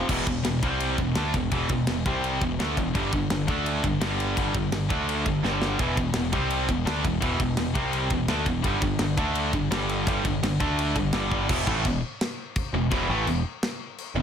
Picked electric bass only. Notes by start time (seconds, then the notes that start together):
0.09 E1
0.26 E1
0.43 E1
0.62 C2
0.98 E1
1.16 D2
1.34 E1
1.51 E1
1.69 E1
1.87 E1
2.06 C2
2.41 E1
2.59 D2
2.77 E1
2.95 G1
3.13 G1
3.30 G1
3.48 D2
3.84 G1
4.00 G1
4.37 G1
4.54 G1
4.72 G1
4.90 D2
5.26 G1
5.44 G1
5.79 E1
5.97 E1
6.14 E1
6.33 C2
6.69 E1
6.86 D2
7.04 E1
7.22 E1
7.39 E1
7.58 E1
7.75 C2
8.10 E1
8.27 D2
8.46 E1
8.64 G1
8.82 G1
8.99 G1
9.17 D2
9.53 G1
9.70 G1
10.07 G1
10.24 G1
10.42 G1
10.60 D2
10.95 G1
11.13 G1
11.49 E1
11.67 A1
11.85 E1
12.73 E1
12.92 E1
13.09 A1
13.26 E1
14.15 E1